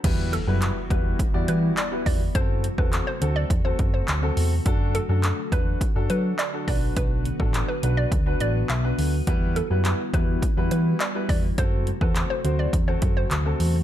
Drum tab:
CC |x---------------|----------------|----------------|----------------|
HH |x-x-x-x-x-x-x-o-|x-x-x-x-x-x-x-o-|x-x-x-x-x-x-x-o-|x-x-x-x-x-x-x-o-|
CP |----x-------x---|----x-------x---|----x-------x---|----x-------x---|
BD |o-----o-o-----o-|o--o----o-o-----|o-----o-o-----o-|o--o----o-------|

CC |----------------|----------------|
HH |x-x-x-x-x-x-x-o-|x-x-x-x-x-x-x-o-|
CP |----x-------x---|----x-------x---|
BD |o-----o-o-----o-|o--o----o-o-----|